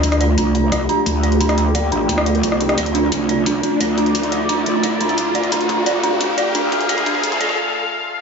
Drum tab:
HH |xxx-x-x-x-x-x-xx|xxx-x-x-x-xxx-xx|xxx-x-x-x-x-x-xx|xxx-x-x-x-xxx-xx|
SD |-r------r-------|-r-------r---r-r|----------------|----------------|
BD |o---o---o---o---|o---o---o---o---|o---o---o---o---|o---o---o---o---|

HH |xxx-x-x-x-x-x-xx|xxx-xxx---------|
SD |----------------|----------------|
BD |o-o-o-o-o-o-o-o-|oooooooo--------|